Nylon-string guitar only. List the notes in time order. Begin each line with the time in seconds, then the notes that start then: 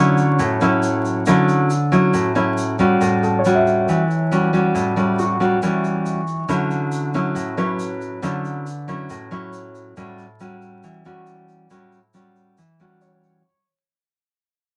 Already playing: D3 F#3 C#4 E4
0.39 A2
0.61 F#3 C#4 E4
1.27 D3 F#3 C#4 E4
1.92 F#3 C#4 E4
2.14 A2
2.35 F#3 C#4 E4
2.79 G3 C#4 F#4
3.01 A2
3.45 G3 C#4 F#4
3.89 E3
4.32 G3 C#4 F#4
4.53 G3 C#4 F#4
4.75 A2
4.96 G3 C#4 F#4
5.40 G3 C#4 F#4
5.62 E3 G3 C#4 F#4
6.49 D3 F#3 C#4 E4
7.14 F#3 C#4 E4
7.35 A2
7.57 F#3 C#4 E4
8.22 D3 F#3 C#4 E4
8.88 F#3 C#4 E4
9.10 A2
9.31 F#3 C#4 E4
9.97 A2 G3 C#4 F#4
10.40 G3 C#4 F#4
10.84 E3
11.05 G3 C#4 F#4
11.70 A2 G3 C#4 F#4
12.14 G3 C#4 F#4
12.58 E3
12.80 G3 C#4 F#4